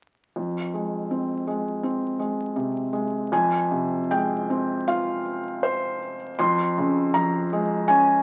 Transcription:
0.36 F2
0.74 G#3
1.11 C4
1.47 G#3
1.83 C4
2.19 G#3
2.56 C3
2.93 G#3
3.32 F2 G#5
3.71 C3
4.11 G#3 G5
4.50 C4
4.88 F4 F5
5.63 C5
6.39 F2 C6
6.78 C#3
7.14 F3 A#5
7.53 G#3
7.88 C#4 G#5

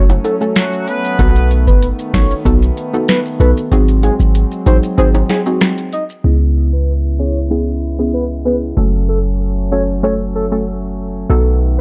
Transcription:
Already playing: F#1 F#3 A3 C#4
0.10 closed hi-hat, high timbale, maracas
0.24 A4, closed hi-hat, high timbale
0.41 A3 C#4 F#4 A4, maracas
0.56 F#3 F#4, finger snap, snare, closed hi-hat, maracas
0.73 maracas
0.87 B3 B4, closed hi-hat
1.04 maracas
1.19 B1 D#3 B3 D#4 F#4 A4, kick, closed hi-hat, maracas
1.36 closed hi-hat, maracas
1.51 closed hi-hat
1.67 G#1 B4, kick, maracas
1.82 closed hi-hat, maracas
1.99 closed hi-hat, maracas
2.14 A1 B3 D#4 F#4 A4 C#5, finger snap, kick, snare, closed hi-hat, maracas
2.31 maracas
2.45 B1 B3 D#4 F#4 A4, kick, closed hi-hat, maracas
2.62 closed hi-hat, maracas
2.77 closed hi-hat
2.93 B3 D#4 F#4 A4, maracas
3.08 B4, finger snap, snare, closed hi-hat, maracas
3.25 maracas
3.40 B1 B3 D#4 F#4 A4 B4, closed hi-hat
3.57 maracas
3.72 G#1 F#3 G#3 C4 D#4 F#4 G#4, closed hi-hat, maracas
3.88 closed hi-hat, maracas
4.03 G#4, closed hi-hat, high timbale
4.20 G#1, maracas
4.35 closed hi-hat, maracas
4.51 maracas
4.66 A1 C4 D#4 F#4 G#4 C5, closed hi-hat, maracas
4.83 maracas
4.98 G#1 C4 D#4 F#4 G#4 C5, closed hi-hat, maracas
5.15 high timbale, maracas
5.29 G#4, snare, closed hi-hat, high timbale
5.46 C4 D#4 F#4 G#4, maracas
5.61 finger snap, cross-stick, snare, closed hi-hat, maracas
5.78 closed hi-hat, maracas
5.93 D#5, closed hi-hat
6.10 maracas
6.24 C#2 C#3 G#3 B3 C#4 E4 G#4
6.73 B4
7.19 B3 C#4 E4 G#4 C#5
7.51 B3 C#4 E4 G#4
7.99 B3 C#4 E4 G#4
8.14 B4
8.45 B3 C#4 E4 G#4 B4
8.77 F#1 F#3 A3 C#4 F#4 A4
9.09 A4
9.72 A3 C#4 F#4 A4 C#5
10.03 A3 C#4 F#4 A4 C#5
10.35 A4
10.52 A3 C#4 F#4 A4
11.29 B1 D#3 A3 B3 D#4 F#4 A4

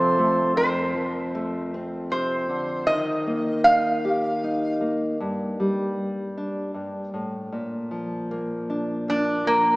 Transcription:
Already playing: F2 C3 F3 C4 A4 C5
0.19 A3
0.56 F2 C5
0.94 F3
1.35 A3
1.74 C4
2.11 C3 C5
2.49 D3
2.87 D#3 D#5
3.27 A#3
3.64 D#4 F5
4.05 G4
4.44 D#4
4.81 A#3
5.20 G2
5.60 G3
6.38 D4
6.74 G2
7.14 A2
7.52 A#2
7.91 F3
8.31 A#3
8.70 D4
9.08 A#3 D4
9.45 F3 A#3

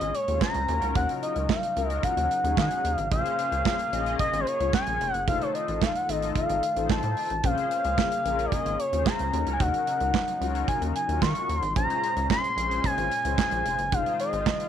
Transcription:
Already playing: A#2 G#3 C#4 F4 G#4 D#5
0.01 G#1, closed hi-hat
0.14 C#5, closed hi-hat
0.28 D#2 C4 F4 G#4 C5, closed hi-hat
0.34 C#4
0.41 A#5, kick, snare, clap
0.54 C#2, closed hi-hat
0.68 D#2 C#3 F#3 C#4 D#4 F4 F#4 A#4, closed hi-hat
0.82 C#2, closed hi-hat
0.95 D#2 F#5, kick, closed hi-hat
1.09 closed hi-hat
1.23 D#5, closed hi-hat
1.36 C#2, closed hi-hat
1.49 F5, kick, snare, clap
1.63 closed hi-hat
1.76 C#2 C#4 F4 F#4 A#4, closed hi-hat
1.90 D#5, closed hi-hat
2.03 F#5, kick, closed hi-hat
2.17 D#2, closed hi-hat
2.31 closed hi-hat
2.44 D#2 C#4 D#4 F#4 G#4, closed hi-hat
2.57 D#3 F#5, kick, snare, clap
2.71 closed hi-hat
2.84 D#2, closed hi-hat
2.95 G#1 F5, closed hi-hat
3.11 A#1 A#3 C4 F4 G#4 C5 F5, kick, closed hi-hat
3.18 C#4
3.26 closed hi-hat
3.39 closed hi-hat
3.52 C#2, closed hi-hat
3.65 kick, snare, clap
3.79 closed hi-hat
3.92 A#1 C#4 F4 G#4 D#5, closed hi-hat
4.06 closed hi-hat
4.19 D#5, kick, closed hi-hat
4.33 G#1, closed hi-hat
4.40 C5
4.47 C#5, closed hi-hat
4.60 C#2 C#4 F4 G#4 C#5, closed hi-hat
4.73 G#5, kick, snare, clap
4.87 A#1, closed hi-hat
5.01 F1, closed hi-hat
5.13 F#1 F#5, closed hi-hat
5.27 F1 D#3 A3 D#4 F4 A4 C5 F5, kick, closed hi-hat
5.42 C#5, closed hi-hat
5.55 D#5, closed hi-hat
5.68 A1, closed hi-hat
5.82 F5, kick, snare, clap
5.96 F#5, closed hi-hat
6.08 G#1 D#4 F4 A4 D#5, closed hi-hat
6.22 closed hi-hat
6.36 F5, kick, closed hi-hat
6.49 G#1, closed hi-hat
6.63 closed hi-hat
6.76 A1 D#4 F4 A4 C5, closed hi-hat
6.89 A1 A5, kick, snare, clap
7.03 A2, closed hi-hat
7.17 open hi-hat
7.30 A1, closed hi-hat
7.44 A#1 C#3 A#3 C#4 F4 G#4 C5 F5, kick, closed hi-hat
7.58 closed hi-hat
7.71 closed hi-hat
7.85 C#2, closed hi-hat
7.98 kick, snare, clap
8.12 closed hi-hat
8.25 A#1 C#4 F4 G#4 A#4, closed hi-hat
8.39 closed hi-hat
8.46 D5
8.52 D#5, kick, closed hi-hat
8.66 G#1, closed hi-hat
8.79 C#5, closed hi-hat
8.93 D#2 C#4 F4 G#4 C5, closed hi-hat
9.06 A#5, kick, snare, clap
9.19 C#2, closed hi-hat
9.33 D#2 C#3 F#3 C#4 D#4 F#4 A4, closed hi-hat
9.40 A#4
9.47 C#2, closed hi-hat
9.53 G#5
9.60 D#2 F#5, kick, closed hi-hat
9.74 closed hi-hat
9.87 closed hi-hat
10.00 C#2, closed hi-hat
10.14 kick, snare, clap
10.28 closed hi-hat
10.41 C#2 C#4 F4 F#4 A#4, closed hi-hat
10.55 closed hi-hat
10.68 G#5, kick, closed hi-hat
10.81 D#2, closed hi-hat
10.95 G#5, closed hi-hat
11.08 D#2 C#4 F4 F#4 A#4, closed hi-hat
11.22 D#3 C#6, kick, snare, clap
11.35 closed hi-hat
11.49 D#2, closed hi-hat
11.59 G#1 C6, closed hi-hat
11.76 A#1 A#2 G#3 C#4 F4 G#4 C5 A#5, kick, closed hi-hat
11.90 closed hi-hat
12.04 closed hi-hat
12.16 C#2, closed hi-hat
12.30 C6, kick, snare, clap
12.44 closed hi-hat
12.57 A#1 C#4 F4 G#4 C5, closed hi-hat
12.71 closed hi-hat
12.84 G#5, kick, closed hi-hat
12.98 G#1, closed hi-hat
13.11 closed hi-hat
13.24 C#2 C#4 F4 G#4 C5, closed hi-hat
13.38 G#5, kick, snare, clap
13.51 A#1, closed hi-hat
13.65 F1, closed hi-hat
13.79 F#1, closed hi-hat
13.92 F1 D#3 G#3 D#4 F4 G#4 C5 F5, kick, closed hi-hat
14.06 closed hi-hat
14.20 D#5, closed hi-hat
14.33 G#1, closed hi-hat
14.46 kick, snare, clap
14.60 closed hi-hat

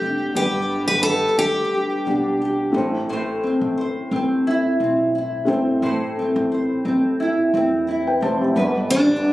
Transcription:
Already playing: G3 B3 D4 G4 B4
0.02 F1 D4
0.33 G1 G3 B3 D4 G4 B4
0.38 G3 B4
0.73 D4
0.88 G1 B4
1.03 A4 B4
1.38 D2 D4 G4
1.74 G4
2.06 B1 G3 B3 D4 G4
2.42 G4
2.71 A1 A2 A3 C4 E4
2.76 C5
3.09 A2 C5
3.44 C4
3.61 A1
3.78 C5
4.11 A1 C4
4.47 E4
4.80 B1 C4
5.15 E4
5.45 G1 A3 C4 E4 C5
5.50 C4
5.82 A1 A2 C5
6.19 C4
6.36 A1
6.52 C5
6.85 A1 C4
7.20 E4
7.54 E2 C4
7.88 E4
8.07 B4 G5
8.22 F1 C4 C5 A5
8.41 G4 E5
8.55 G1 G3 B3 D4 B4
8.90 D4
9.09 G1
9.25 B4

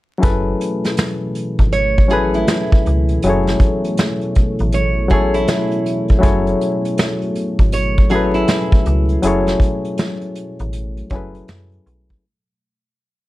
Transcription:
0.18 F#3 C#4 E4 G#4
0.23 F#1 B2 E3 A3 A4 B4, kick, closed hi-hat
0.61 closed hi-hat
0.84 snare, closed hi-hat
0.97 snare, closed hi-hat
1.35 closed hi-hat
1.59 G#1, kick, closed hi-hat
1.72 C#5, closed hi-hat
1.98 kick
2.08 F#3 C#4 E4 G#4 A4, closed hi-hat
2.13 B4
2.34 E4, closed hi-hat
2.47 snare, closed hi-hat
2.72 kick
2.86 C#2, closed hi-hat
3.09 closed hi-hat
3.22 F#1 F#3 C#4 E4, closed hi-hat
3.27 G#4 A4 C#5
3.47 snare
3.60 kick, closed hi-hat
3.84 closed hi-hat
3.97 snare, closed hi-hat
4.21 closed hi-hat
4.35 kick, closed hi-hat
4.59 A1, closed hi-hat
4.72 C#5, closed hi-hat
5.08 F#3 C#4 E4 G#4, kick, closed hi-hat
5.13 A4 C#5
5.34 E4, closed hi-hat
5.48 snare, closed hi-hat
5.71 closed hi-hat
5.86 closed hi-hat
6.08 kick, closed hi-hat
6.19 F#3 C#4 E4 G#4
6.23 F#1 A4 C#5, kick, closed hi-hat
6.47 closed hi-hat
6.61 closed hi-hat
6.85 closed hi-hat
6.98 snare, closed hi-hat
7.21 closed hi-hat
7.35 closed hi-hat
7.59 G#1, kick, closed hi-hat
7.72 C#5, closed hi-hat
7.98 kick
8.09 F#3 C#4 E4 G#4, closed hi-hat
8.14 A4 B4
8.34 E4, closed hi-hat
8.48 snare, closed hi-hat
8.72 kick
8.86 C#2, closed hi-hat
9.09 closed hi-hat
9.22 F#1 F#3 C#4 E4 G#4, closed hi-hat
9.26 A4 C#5
9.47 snare, closed hi-hat
9.60 kick, closed hi-hat
9.85 closed hi-hat
9.98 snare, closed hi-hat
10.21 closed hi-hat
10.35 closed hi-hat
10.59 A1, closed hi-hat
10.73 closed hi-hat
10.97 closed hi-hat
11.10 F#1 F#3 C#4 E4 G#4, kick, closed hi-hat
11.14 A4 B4
11.35 closed hi-hat
11.48 F#2, snare, closed hi-hat
11.72 closed hi-hat
11.86 B1, closed hi-hat
12.09 kick, closed hi-hat

